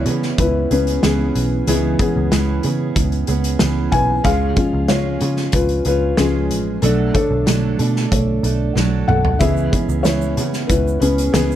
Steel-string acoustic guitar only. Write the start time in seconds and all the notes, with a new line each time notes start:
0.06 B3 C#4 G#4
0.71 B3 C#4 G#4
1.03 E3 B3 C#4 G#4
1.68 C#3 E3 B3 C#4 G#4
2.00 B3 C#4 G#4
2.31 E3 B3 C#4 G#4
2.63 B3 C#4 G#4
3.28 B3 C#4 G#4
3.60 E3 B3 C#4 G#4
4.24 C#3 G#3 C#4 F4 G#4
4.56 C#4 F4 G#4
4.89 G#3 C#4 F4 G#4
5.21 C#4 F4 G#4
5.86 C#4 F4 G#4
6.18 G#3 C#4 F4 G#4
6.83 B2 F#3 A3 D4 A4
7.14 A3 D4 A4
7.46 F#3 A3 D4 A4
7.79 A3 D4 A4
8.43 A3 D4 A4
8.75 F#3 A3 D4 A4
9.40 C#3 E3 B3 C#4 G#4
9.72 B3 C#4 G#4
10.04 E3 B3 C#4 G#4
10.37 B3 C#4 G#4
11.02 B3 C#4 G#4
11.34 E3 B3 C#4 G#4